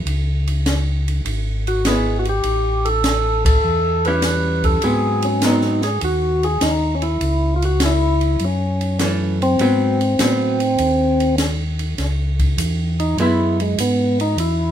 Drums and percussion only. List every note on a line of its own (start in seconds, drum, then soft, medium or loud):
0.07 ride medium
0.47 ride soft
0.66 snare medium
0.66 hi-hat pedal soft
0.66 ride medium
1.08 ride soft
1.26 ride medium
1.67 ride soft
1.85 snare medium
1.85 hi-hat pedal soft
1.85 ride medium
2.25 ride soft
2.43 ride medium
2.85 ride soft
3.04 snare medium
3.04 hi-hat pedal soft
3.04 ride medium
3.45 kick medium
3.45 ride medium
4.05 ride soft
4.22 snare medium
4.22 hi-hat pedal medium
4.22 ride medium
4.64 kick medium
4.64 ride soft
4.82 ride medium
5.22 ride soft
5.42 snare medium
5.42 hi-hat pedal medium
5.42 ride medium
5.61 snare soft
5.82 snare soft
5.82 ride soft
6.01 ride medium
6.43 ride soft
6.61 snare medium
6.61 hi-hat pedal medium
6.61 ride medium
7.02 ride soft
7.21 ride soft
7.62 ride soft
7.80 snare medium
7.80 hi-hat pedal medium
7.80 ride medium
8.21 ride soft
8.39 ride soft
8.81 ride soft
8.99 snare medium
8.99 hi-hat pedal soft
8.99 ride medium
9.42 ride soft
9.59 ride medium
10.01 ride soft
10.19 snare medium
10.19 hi-hat pedal medium
10.19 ride medium
10.60 ride soft
10.78 ride medium
11.20 ride soft
11.38 snare medium
11.38 hi-hat pedal medium
11.38 ride medium
11.79 ride soft
11.98 snare soft
11.98 ride medium
12.39 kick medium
12.39 ride soft
12.58 hi-hat pedal medium
12.58 ride medium
13.00 ride soft
13.18 ride medium
13.60 ride soft
13.78 hi-hat pedal medium
13.78 ride medium
14.20 ride soft
14.38 ride medium